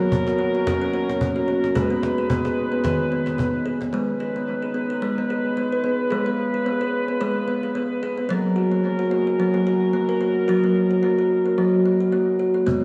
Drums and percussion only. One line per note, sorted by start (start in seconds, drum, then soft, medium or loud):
0.12 cajon bass medium
0.27 cajon slap soft
0.67 cajon bass medium
0.67 cajon slap medium
1.09 cajon slap soft
1.21 cajon bass medium
1.64 cajon slap soft
1.76 cajon bass medium
2.03 cajon slap medium
2.18 cajon slap soft
2.30 cajon bass medium
2.45 cajon slap soft
2.85 cajon bass medium
2.85 cajon slap medium
3.27 cajon slap soft
3.39 cajon bass soft
3.55 cajon slap soft
3.82 cajon slap soft
12.68 cajon bass soft